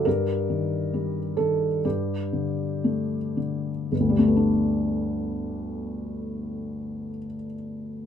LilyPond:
\new Staff \with { instrumentName = "Felt piano" } { \clef bass \time 4/4 \key g \major \tempo 4 = 57 << { bes'4. a'8 g'4. r8 | <g,, d, g a b d'>1 | } \\ { g,8 ees8 g8 ees8 g,8 d8 a8 d8 | r1 | } >> }